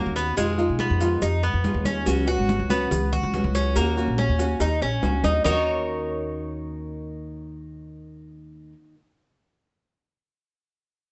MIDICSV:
0, 0, Header, 1, 6, 480
1, 0, Start_track
1, 0, Key_signature, -6, "minor"
1, 0, Tempo, 422535
1, 426, Time_signature, 4, 2, 24, 8
1, 12623, End_track
2, 0, Start_track
2, 0, Title_t, "Cuban tres"
2, 0, Program_c, 0, 25
2, 0, Note_on_c, 0, 58, 92
2, 169, Note_off_c, 0, 58, 0
2, 182, Note_on_c, 0, 59, 77
2, 417, Note_off_c, 0, 59, 0
2, 425, Note_on_c, 0, 56, 78
2, 892, Note_off_c, 0, 56, 0
2, 905, Note_on_c, 0, 59, 75
2, 1373, Note_off_c, 0, 59, 0
2, 1386, Note_on_c, 0, 63, 70
2, 1620, Note_off_c, 0, 63, 0
2, 1627, Note_on_c, 0, 59, 80
2, 2094, Note_off_c, 0, 59, 0
2, 2106, Note_on_c, 0, 61, 79
2, 2574, Note_off_c, 0, 61, 0
2, 2584, Note_on_c, 0, 66, 95
2, 3053, Note_off_c, 0, 66, 0
2, 3069, Note_on_c, 0, 59, 74
2, 3536, Note_off_c, 0, 59, 0
2, 3551, Note_on_c, 0, 66, 96
2, 4017, Note_off_c, 0, 66, 0
2, 4030, Note_on_c, 0, 61, 82
2, 4264, Note_off_c, 0, 61, 0
2, 4272, Note_on_c, 0, 58, 81
2, 4737, Note_off_c, 0, 58, 0
2, 4756, Note_on_c, 0, 61, 76
2, 5220, Note_off_c, 0, 61, 0
2, 5238, Note_on_c, 0, 63, 73
2, 5468, Note_off_c, 0, 63, 0
2, 5478, Note_on_c, 0, 61, 85
2, 5941, Note_off_c, 0, 61, 0
2, 5955, Note_on_c, 0, 63, 75
2, 6172, Note_off_c, 0, 63, 0
2, 6185, Note_on_c, 0, 63, 81
2, 6194, Note_on_c, 0, 70, 69
2, 6197, Note_on_c, 0, 73, 95
2, 9908, Note_off_c, 0, 63, 0
2, 9912, Note_off_c, 0, 70, 0
2, 9919, Note_off_c, 0, 73, 0
2, 12623, End_track
3, 0, Start_track
3, 0, Title_t, "Nylon-string guitar"
3, 0, Program_c, 1, 24
3, 0, Note_on_c, 1, 51, 54
3, 0, Note_on_c, 1, 58, 54
3, 0, Note_on_c, 1, 61, 57
3, 0, Note_on_c, 1, 66, 63
3, 402, Note_off_c, 1, 51, 0
3, 411, Note_on_c, 1, 47, 67
3, 416, Note_on_c, 1, 51, 81
3, 418, Note_off_c, 1, 58, 0
3, 423, Note_off_c, 1, 61, 0
3, 423, Note_on_c, 1, 56, 78
3, 427, Note_off_c, 1, 66, 0
3, 428, Note_on_c, 1, 63, 87
3, 433, Note_on_c, 1, 65, 80
3, 646, Note_off_c, 1, 65, 0
3, 649, Note_off_c, 1, 47, 0
3, 652, Note_off_c, 1, 51, 0
3, 652, Note_off_c, 1, 63, 0
3, 655, Note_off_c, 1, 56, 0
3, 660, Note_on_c, 1, 65, 74
3, 666, Note_on_c, 1, 63, 74
3, 677, Note_on_c, 1, 56, 63
3, 684, Note_on_c, 1, 51, 64
3, 1129, Note_off_c, 1, 65, 0
3, 1138, Note_off_c, 1, 63, 0
3, 1142, Note_on_c, 1, 65, 75
3, 1143, Note_off_c, 1, 56, 0
3, 1147, Note_off_c, 1, 51, 0
3, 1151, Note_on_c, 1, 63, 66
3, 1161, Note_on_c, 1, 56, 59
3, 1163, Note_on_c, 1, 51, 56
3, 1375, Note_off_c, 1, 56, 0
3, 1376, Note_off_c, 1, 51, 0
3, 1376, Note_off_c, 1, 65, 0
3, 1380, Note_off_c, 1, 63, 0
3, 1862, Note_on_c, 1, 51, 50
3, 1871, Note_on_c, 1, 56, 56
3, 1882, Note_on_c, 1, 63, 59
3, 1886, Note_on_c, 1, 65, 58
3, 2335, Note_on_c, 1, 49, 74
3, 2337, Note_off_c, 1, 51, 0
3, 2341, Note_off_c, 1, 56, 0
3, 2341, Note_on_c, 1, 54, 80
3, 2346, Note_off_c, 1, 63, 0
3, 2346, Note_on_c, 1, 59, 85
3, 2349, Note_off_c, 1, 65, 0
3, 2350, Note_on_c, 1, 61, 80
3, 2356, Note_on_c, 1, 66, 79
3, 2561, Note_off_c, 1, 66, 0
3, 2573, Note_off_c, 1, 49, 0
3, 2573, Note_off_c, 1, 61, 0
3, 2575, Note_on_c, 1, 66, 76
3, 2576, Note_off_c, 1, 54, 0
3, 2576, Note_off_c, 1, 59, 0
3, 2587, Note_on_c, 1, 61, 70
3, 2589, Note_on_c, 1, 59, 63
3, 2597, Note_on_c, 1, 54, 62
3, 3046, Note_off_c, 1, 66, 0
3, 3054, Note_off_c, 1, 61, 0
3, 3060, Note_on_c, 1, 66, 73
3, 3061, Note_off_c, 1, 59, 0
3, 3064, Note_off_c, 1, 54, 0
3, 3068, Note_on_c, 1, 61, 72
3, 3074, Note_on_c, 1, 59, 71
3, 3082, Note_on_c, 1, 54, 61
3, 3295, Note_off_c, 1, 59, 0
3, 3296, Note_off_c, 1, 54, 0
3, 3296, Note_off_c, 1, 66, 0
3, 3300, Note_off_c, 1, 61, 0
3, 3789, Note_on_c, 1, 54, 58
3, 3796, Note_on_c, 1, 59, 56
3, 3804, Note_on_c, 1, 61, 57
3, 3810, Note_on_c, 1, 66, 62
3, 4261, Note_off_c, 1, 54, 0
3, 4264, Note_off_c, 1, 59, 0
3, 4269, Note_off_c, 1, 61, 0
3, 4271, Note_off_c, 1, 66, 0
3, 4271, Note_on_c, 1, 51, 77
3, 4280, Note_on_c, 1, 58, 79
3, 4289, Note_on_c, 1, 61, 84
3, 4293, Note_on_c, 1, 66, 89
3, 4497, Note_off_c, 1, 66, 0
3, 4502, Note_off_c, 1, 51, 0
3, 4506, Note_off_c, 1, 58, 0
3, 4508, Note_off_c, 1, 61, 0
3, 4511, Note_on_c, 1, 66, 70
3, 4522, Note_on_c, 1, 61, 67
3, 4529, Note_on_c, 1, 58, 65
3, 4968, Note_off_c, 1, 66, 0
3, 4980, Note_off_c, 1, 61, 0
3, 4982, Note_on_c, 1, 66, 73
3, 4991, Note_off_c, 1, 58, 0
3, 4994, Note_on_c, 1, 61, 65
3, 5008, Note_on_c, 1, 58, 61
3, 5217, Note_off_c, 1, 58, 0
3, 5217, Note_off_c, 1, 66, 0
3, 5223, Note_off_c, 1, 61, 0
3, 5703, Note_on_c, 1, 51, 53
3, 5712, Note_on_c, 1, 58, 51
3, 5718, Note_on_c, 1, 61, 56
3, 5725, Note_on_c, 1, 66, 62
3, 6171, Note_off_c, 1, 51, 0
3, 6182, Note_off_c, 1, 58, 0
3, 6185, Note_off_c, 1, 61, 0
3, 6185, Note_on_c, 1, 51, 73
3, 6189, Note_off_c, 1, 66, 0
3, 6198, Note_on_c, 1, 58, 77
3, 6208, Note_on_c, 1, 61, 87
3, 6222, Note_on_c, 1, 66, 83
3, 10161, Note_off_c, 1, 51, 0
3, 10174, Note_off_c, 1, 58, 0
3, 10184, Note_off_c, 1, 61, 0
3, 10198, Note_off_c, 1, 66, 0
3, 12623, End_track
4, 0, Start_track
4, 0, Title_t, "Upright bass"
4, 0, Program_c, 2, 32
4, 66, Note_on_c, 2, 39, 97
4, 409, Note_off_c, 2, 39, 0
4, 425, Note_on_c, 2, 41, 88
4, 769, Note_off_c, 2, 41, 0
4, 785, Note_on_c, 2, 47, 83
4, 1015, Note_off_c, 2, 47, 0
4, 1025, Note_on_c, 2, 41, 99
4, 1369, Note_off_c, 2, 41, 0
4, 1383, Note_on_c, 2, 41, 115
4, 1728, Note_off_c, 2, 41, 0
4, 1744, Note_on_c, 2, 41, 96
4, 1974, Note_off_c, 2, 41, 0
4, 1979, Note_on_c, 2, 39, 102
4, 2326, Note_off_c, 2, 39, 0
4, 2343, Note_on_c, 2, 37, 90
4, 2688, Note_off_c, 2, 37, 0
4, 2705, Note_on_c, 2, 32, 86
4, 2936, Note_off_c, 2, 32, 0
4, 2945, Note_on_c, 2, 37, 98
4, 3290, Note_off_c, 2, 37, 0
4, 3306, Note_on_c, 2, 37, 110
4, 3650, Note_off_c, 2, 37, 0
4, 3672, Note_on_c, 2, 37, 102
4, 3900, Note_off_c, 2, 37, 0
4, 3907, Note_on_c, 2, 37, 104
4, 4251, Note_off_c, 2, 37, 0
4, 4270, Note_on_c, 2, 39, 101
4, 4613, Note_off_c, 2, 39, 0
4, 4629, Note_on_c, 2, 34, 85
4, 4858, Note_off_c, 2, 34, 0
4, 4872, Note_on_c, 2, 39, 95
4, 5214, Note_off_c, 2, 39, 0
4, 5226, Note_on_c, 2, 39, 104
4, 5457, Note_off_c, 2, 39, 0
4, 5473, Note_on_c, 2, 34, 74
4, 5689, Note_off_c, 2, 34, 0
4, 5716, Note_on_c, 2, 37, 82
4, 5930, Note_off_c, 2, 37, 0
4, 5949, Note_on_c, 2, 39, 87
4, 6166, Note_off_c, 2, 39, 0
4, 6190, Note_on_c, 2, 39, 89
4, 9912, Note_off_c, 2, 39, 0
4, 12623, End_track
5, 0, Start_track
5, 0, Title_t, "Muted nylon-string guitar strokes"
5, 1385, Note_on_c, 9, 29, 58
5, 1499, Note_off_c, 9, 29, 0
5, 3304, Note_on_c, 9, 29, 61
5, 3418, Note_off_c, 9, 29, 0
5, 5228, Note_on_c, 9, 29, 56
5, 5342, Note_off_c, 9, 29, 0
5, 12623, End_track
6, 0, Start_track
6, 0, Title_t, "Drums"
6, 179, Note_on_c, 9, 56, 69
6, 182, Note_on_c, 9, 63, 39
6, 188, Note_on_c, 9, 70, 75
6, 293, Note_off_c, 9, 56, 0
6, 296, Note_off_c, 9, 63, 0
6, 301, Note_off_c, 9, 70, 0
6, 422, Note_on_c, 9, 56, 100
6, 424, Note_on_c, 9, 70, 97
6, 425, Note_on_c, 9, 63, 36
6, 535, Note_off_c, 9, 56, 0
6, 538, Note_off_c, 9, 63, 0
6, 538, Note_off_c, 9, 70, 0
6, 662, Note_on_c, 9, 63, 37
6, 663, Note_on_c, 9, 70, 28
6, 775, Note_off_c, 9, 63, 0
6, 777, Note_off_c, 9, 70, 0
6, 896, Note_on_c, 9, 63, 97
6, 902, Note_on_c, 9, 56, 75
6, 905, Note_on_c, 9, 70, 30
6, 1010, Note_off_c, 9, 63, 0
6, 1015, Note_off_c, 9, 56, 0
6, 1018, Note_off_c, 9, 70, 0
6, 1138, Note_on_c, 9, 63, 32
6, 1144, Note_on_c, 9, 56, 80
6, 1144, Note_on_c, 9, 70, 75
6, 1252, Note_off_c, 9, 63, 0
6, 1258, Note_off_c, 9, 56, 0
6, 1258, Note_off_c, 9, 70, 0
6, 1384, Note_on_c, 9, 63, 36
6, 1385, Note_on_c, 9, 70, 88
6, 1386, Note_on_c, 9, 56, 113
6, 1498, Note_off_c, 9, 63, 0
6, 1498, Note_off_c, 9, 70, 0
6, 1499, Note_off_c, 9, 56, 0
6, 1622, Note_on_c, 9, 63, 37
6, 1627, Note_on_c, 9, 70, 32
6, 1736, Note_off_c, 9, 63, 0
6, 1741, Note_off_c, 9, 70, 0
6, 1865, Note_on_c, 9, 63, 79
6, 1869, Note_on_c, 9, 56, 72
6, 1869, Note_on_c, 9, 70, 34
6, 1978, Note_off_c, 9, 63, 0
6, 1983, Note_off_c, 9, 56, 0
6, 1983, Note_off_c, 9, 70, 0
6, 2104, Note_on_c, 9, 63, 89
6, 2105, Note_on_c, 9, 56, 76
6, 2109, Note_on_c, 9, 70, 73
6, 2217, Note_off_c, 9, 63, 0
6, 2219, Note_off_c, 9, 56, 0
6, 2222, Note_off_c, 9, 70, 0
6, 2344, Note_on_c, 9, 56, 110
6, 2347, Note_on_c, 9, 70, 98
6, 2351, Note_on_c, 9, 63, 37
6, 2457, Note_off_c, 9, 56, 0
6, 2460, Note_off_c, 9, 70, 0
6, 2465, Note_off_c, 9, 63, 0
6, 2587, Note_on_c, 9, 70, 31
6, 2595, Note_on_c, 9, 63, 38
6, 2700, Note_off_c, 9, 70, 0
6, 2709, Note_off_c, 9, 63, 0
6, 2827, Note_on_c, 9, 56, 73
6, 2831, Note_on_c, 9, 63, 97
6, 2831, Note_on_c, 9, 70, 32
6, 2941, Note_off_c, 9, 56, 0
6, 2944, Note_off_c, 9, 63, 0
6, 2945, Note_off_c, 9, 70, 0
6, 3069, Note_on_c, 9, 63, 97
6, 3071, Note_on_c, 9, 70, 75
6, 3183, Note_off_c, 9, 63, 0
6, 3185, Note_off_c, 9, 70, 0
6, 3308, Note_on_c, 9, 56, 113
6, 3313, Note_on_c, 9, 70, 91
6, 3314, Note_on_c, 9, 63, 35
6, 3314, Note_on_c, 9, 64, 83
6, 3422, Note_off_c, 9, 56, 0
6, 3427, Note_off_c, 9, 70, 0
6, 3428, Note_off_c, 9, 63, 0
6, 3428, Note_off_c, 9, 64, 0
6, 3556, Note_on_c, 9, 63, 37
6, 3556, Note_on_c, 9, 64, 77
6, 3557, Note_on_c, 9, 70, 31
6, 3669, Note_off_c, 9, 63, 0
6, 3669, Note_off_c, 9, 64, 0
6, 3670, Note_off_c, 9, 70, 0
6, 3790, Note_on_c, 9, 56, 77
6, 3792, Note_on_c, 9, 70, 34
6, 3795, Note_on_c, 9, 63, 85
6, 3903, Note_off_c, 9, 56, 0
6, 3905, Note_off_c, 9, 70, 0
6, 3908, Note_off_c, 9, 63, 0
6, 4032, Note_on_c, 9, 70, 79
6, 4033, Note_on_c, 9, 56, 80
6, 4037, Note_on_c, 9, 63, 36
6, 4146, Note_off_c, 9, 70, 0
6, 4147, Note_off_c, 9, 56, 0
6, 4151, Note_off_c, 9, 63, 0
6, 4267, Note_on_c, 9, 56, 108
6, 4270, Note_on_c, 9, 70, 89
6, 4275, Note_on_c, 9, 63, 36
6, 4380, Note_off_c, 9, 56, 0
6, 4384, Note_off_c, 9, 70, 0
6, 4388, Note_off_c, 9, 63, 0
6, 4514, Note_on_c, 9, 63, 35
6, 4515, Note_on_c, 9, 70, 28
6, 4627, Note_off_c, 9, 63, 0
6, 4628, Note_off_c, 9, 70, 0
6, 4748, Note_on_c, 9, 56, 73
6, 4750, Note_on_c, 9, 63, 96
6, 4756, Note_on_c, 9, 70, 32
6, 4862, Note_off_c, 9, 56, 0
6, 4863, Note_off_c, 9, 63, 0
6, 4870, Note_off_c, 9, 70, 0
6, 4989, Note_on_c, 9, 56, 74
6, 4992, Note_on_c, 9, 70, 72
6, 4997, Note_on_c, 9, 63, 35
6, 5103, Note_off_c, 9, 56, 0
6, 5106, Note_off_c, 9, 70, 0
6, 5111, Note_off_c, 9, 63, 0
6, 5228, Note_on_c, 9, 56, 106
6, 5228, Note_on_c, 9, 60, 102
6, 5229, Note_on_c, 9, 70, 88
6, 5234, Note_on_c, 9, 63, 36
6, 5342, Note_off_c, 9, 56, 0
6, 5342, Note_off_c, 9, 60, 0
6, 5343, Note_off_c, 9, 70, 0
6, 5347, Note_off_c, 9, 63, 0
6, 5471, Note_on_c, 9, 60, 77
6, 5471, Note_on_c, 9, 70, 27
6, 5477, Note_on_c, 9, 63, 37
6, 5585, Note_off_c, 9, 60, 0
6, 5585, Note_off_c, 9, 70, 0
6, 5590, Note_off_c, 9, 63, 0
6, 5712, Note_on_c, 9, 56, 70
6, 5712, Note_on_c, 9, 61, 99
6, 5712, Note_on_c, 9, 63, 81
6, 5718, Note_on_c, 9, 70, 32
6, 5825, Note_off_c, 9, 56, 0
6, 5825, Note_off_c, 9, 61, 0
6, 5826, Note_off_c, 9, 63, 0
6, 5832, Note_off_c, 9, 70, 0
6, 5949, Note_on_c, 9, 56, 78
6, 5949, Note_on_c, 9, 61, 89
6, 5952, Note_on_c, 9, 63, 90
6, 5955, Note_on_c, 9, 70, 75
6, 6063, Note_off_c, 9, 56, 0
6, 6063, Note_off_c, 9, 61, 0
6, 6065, Note_off_c, 9, 63, 0
6, 6068, Note_off_c, 9, 70, 0
6, 6187, Note_on_c, 9, 61, 97
6, 6193, Note_on_c, 9, 64, 100
6, 6199, Note_on_c, 9, 70, 105
6, 6300, Note_off_c, 9, 61, 0
6, 6307, Note_off_c, 9, 64, 0
6, 6313, Note_off_c, 9, 70, 0
6, 12623, End_track
0, 0, End_of_file